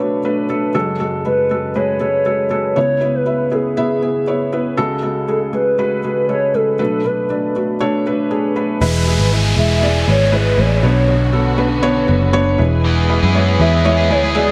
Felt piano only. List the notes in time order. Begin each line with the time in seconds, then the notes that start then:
Already playing: B1 B2 F#4 B4 D5
0.00 A3 D4 C#5
0.25 A3 D4 B4
0.49 A3 D4 A4
0.74 F#1 F#2 G#3 F#4 A4
1.00 G#3 F#4 A4
1.25 G#3 F#4 B4
1.51 G#3 F#4 A4
1.76 G#3 F#4 B4
2.00 G#3 F#4 A4
2.26 G#3 F#4 A4
2.50 G#3 F#4 A4
2.76 C#2 C#3 B3 E4 C#5
3.01 B3 E4 B4
3.26 B3 E4 E5
3.51 B3 E4 G#4
3.77 B3 E4 E5
4.02 B3 E4 G#4
4.27 B3 E4 C#5
4.52 B3 E4 B4
4.77 C#2 C#3 G#3 F#4 A4
5.03 G#3 F#4 A4
5.28 G#3 F#4 G#4
5.53 G#3 F#4 G#4
5.78 G#3 F#4 B4
6.04 G#3 F#4 G#4
6.29 G#3 F#4 A4
6.54 G#3 F#4 G#4
6.79 B1 B2 A3 D4 B4
7.05 A3 D4 B4
7.30 A3 D4 D5
7.56 A3 D4 F#4
7.80 A3 D4 C#5
8.06 A3 D4 B4
8.31 A3 D4 G#4
8.56 A3 D4 B4
8.81 E3 G#3 E4 B4
9.07 G#3 E4 G#4
9.32 G#3 E4 B4
9.57 G#3 E4 G#4
9.82 G#3 E4 D5
10.07 G#3 E4 B4
10.32 G#3 E4 B4
10.57 G#3 E4 B4
10.83 B2 B3 D4 C#5
11.08 B3 D4 C#5
11.33 B3 D4 A4
11.57 B3 D4 B4
11.83 B3 D4 C#5
12.08 B3 D4 B4
12.33 B3 D4 C#5
12.58 E3 G#3 E4 B4
13.09 G#3 E4 B4
13.35 G#3 E4 C#5
13.60 G#3 E4 G#4
13.85 G#3 E4 C#5
14.10 G#3 E4 B4
14.35 G#3 E4 G#4